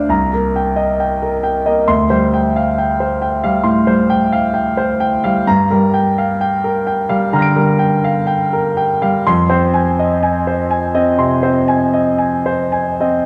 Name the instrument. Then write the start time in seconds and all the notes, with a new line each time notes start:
grand piano
Already playing: D2 D4 C5 D5 F5 C6
0.09 C2 A#5
0.33 A#3 A#4
0.56 G5
0.76 D#5
1.00 G5
1.22 A#4
1.43 G5
1.66 A#3 D#5
1.88 D2 C6
2.10 G3 C5
2.34 G5
2.56 F5
2.78 G5
3.00 C5
3.22 G5
3.44 G3 F5
3.64 A2 C6
3.87 G3 C5
4.10 G5
4.32 F5
4.54 G5
4.77 C5
5.00 G5
5.24 G3 F5
5.47 G2 A#5
5.71 G3 A#4
5.94 G5
6.18 F5
6.41 G5
6.64 A#4
6.87 G5
7.09 G3 F5
7.33 D3 G5 A#5 F6
7.39 A#6 D7
7.56 G3 A#4
7.79 G5
8.04 F5
8.27 G5
8.53 A#4
8.77 G5
9.02 G3 F5
9.27 F2 C6
9.49 C4 C5
9.74 G#5
9.99 D#5
10.23 G#5
10.47 C5
10.70 G#5
10.95 C4 D#5
11.18 C3 C6
11.43 C4 C5
11.68 G#5
11.93 D#5
12.18 G#5
12.46 C5
12.72 G#5
13.00 C4 D#5